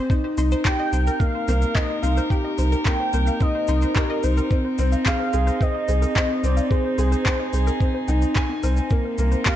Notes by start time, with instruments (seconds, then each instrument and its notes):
Already playing: upright piano C4 G#4 C5
0.10 upright piano D#4, synth arpeggio sound C5, kick, shaker
0.24 string quartet C4, synth arpeggio sound C5
0.38 sub bass C2, upright piano D#4, synth arpeggio sound C6, shaker
0.45 string quartet A#4
0.52 string quartet D#4, synth arpeggio sound C5, shaker
0.65 upright piano G4, soft synth lead G5, synth arpeggio sound G5, kick, clap, shaker
0.79 synth arpeggio sound D#5
0.92 sub bass C2, upright piano D#4, synth arpeggio sound C5, shaker
1.07 synth arpeggio sound A#4, shaker
1.19 upright piano A#3, soft synth lead F5, kick, shaker
1.35 synth arpeggio sound C5
1.48 sub bass C2, upright piano A#3, synth arpeggio sound C5, shaker
1.62 synth arpeggio sound F5, shaker
1.75 upright piano D#4, synth arpeggio sound C5, soft synth lead D#5, kick, clap, shaker
1.90 synth arpeggio sound C5
2.03 sub bass C2, upright piano D#4, soft synth lead F5, synth arpeggio sound C6, shaker
2.17 synth arpeggio sound C5, shaker
2.30 upright piano G4, synth arpeggio sound G5, kick, shaker
2.45 synth arpeggio sound D#5
2.58 sub bass C2, upright piano D#4, synth arpeggio sound C5, shaker
2.72 synth arpeggio sound A#4, shaker
2.85 upright piano A#3, soft synth lead G5, kick, clap, shaker
3.00 synth arpeggio sound C5
3.13 sub bass C2, upright piano A#3, synth arpeggio sound C5, shaker
3.27 synth arpeggio sound F5, shaker
3.41 upright piano D#4, synth arpeggio sound C5, soft synth lead D#5, kick, shaker
3.55 synth arpeggio sound C5
3.68 sub bass C2, upright piano D#4, synth arpeggio sound C6, shaker
3.82 synth arpeggio sound C5, shaker
3.96 upright piano G4, soft synth lead A#4, synth arpeggio sound G5, kick, clap, shaker
4.10 synth arpeggio sound D#5
4.23 sub bass C2, upright piano D#4, synth arpeggio sound C5, soft synth lead C5, shaker
4.37 synth arpeggio sound A#4, shaker
4.51 upright piano C4, kick, shaker
4.65 synth arpeggio sound C5
4.78 sub bass C2, upright piano C4, synth arpeggio sound C5, shaker
4.92 synth arpeggio sound F5, shaker
5.06 upright piano G#4, synth arpeggio sound C5, soft synth lead F5, kick, clap, shaker
5.19 synth arpeggio sound C5
5.33 sub bass C2, upright piano G#4, synth arpeggio sound C6, shaker
5.47 synth arpeggio sound C5, shaker
5.61 upright piano C5, soft synth lead D#5, synth arpeggio sound G5, kick, shaker
5.75 synth arpeggio sound D#5
5.88 sub bass C2, upright piano G#4, synth arpeggio sound C5, shaker
6.02 synth arpeggio sound A#4, shaker
6.16 upright piano C4, kick, clap, shaker
6.30 synth arpeggio sound C5
6.43 sub bass C2, upright piano C4, synth arpeggio sound C5, soft synth lead D5, shaker
6.49 string quartet G#4
6.57 synth arpeggio sound F5, shaker
6.71 upright piano G#4, synth arpeggio sound C5, soft synth lead C5, kick, shaker
6.84 synth arpeggio sound C5
6.98 sub bass C2, upright piano G#4, synth arpeggio sound C6, shaker
7.12 synth arpeggio sound C5, shaker
7.26 upright piano C5, synth arpeggio sound G5, kick, clap, shaker
7.40 synth arpeggio sound D#5
7.53 sub bass C2, upright piano G#4, synth arpeggio sound C5, shaker
7.67 synth arpeggio sound A#4, shaker
7.80 upright piano C4, kick, shaker
7.94 synth arpeggio sound C5
8.08 sub bass C2, upright piano D#4, synth arpeggio sound G5, shaker
8.22 synth arpeggio sound C5, shaker
8.36 upright piano G#5, synth arpeggio sound C6, kick, clap, shaker
8.49 synth arpeggio sound C4
8.63 sub bass C2, upright piano C4, synth arpeggio sound A#4, shaker
8.77 synth arpeggio sound C5, shaker
8.90 string quartet C3, upright piano A#3, synth arpeggio sound C5, kick, shaker
9.04 synth arpeggio sound C5
9.18 sub bass C2, upright piano A#3, synth arpeggio sound C6, shaker
9.26 string quartet A#4
9.32 synth arpeggio sound C5, shaker
9.46 upright piano G4, soft synth lead F5, synth arpeggio sound G5, kick, clap, shaker